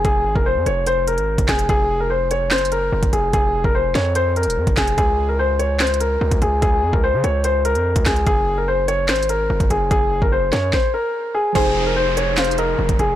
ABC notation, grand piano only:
X:1
M:4/4
L:1/16
Q:1/4=146
K:Fphr
V:1 name="Grand piano"
A3 B c2 d2 c2 B4 A2 | A3 B c2 d2 c2 B4 A2 | A3 B c2 d2 c2 B4 A2 | A3 B c2 d2 c2 B4 A2 |
A3 B c2 d2 c2 B4 A2 | A3 B c2 d2 c2 B4 A2 | A3 B c2 d2 c2 B4 A2 | A3 B c2 d2 c2 B4 A2 |]